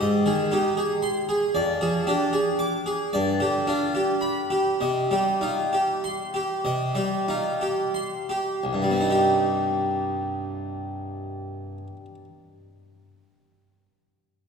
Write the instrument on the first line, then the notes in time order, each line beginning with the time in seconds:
harpsichord
0.01 G#2 D#5
0.26 D#3 G#4
0.52 D#4 G4
0.77 G#4
1.02 C6
1.29 G#4
1.55 F2 D5
1.81 F3 G#4
2.07 D4 G4
2.33 G#4
2.59 D6
2.86 G#4
3.13 G2 D5
3.40 D3 G4
3.67 D4 F4
3.95 G4
4.21 B5
4.50 G4
4.81 C3 D#5
5.11 G3 G4
5.41 D#4 F4
5.73 G4
6.04 C6
6.34 G4
6.65 C3 D#5
6.95 G3 G4
7.28 D#4 F4
7.61 G4
7.94 C6
8.29 G4
8.64 C2
8.73 G2
8.82 G3
8.91 C4
9.01 D#4
9.10 G4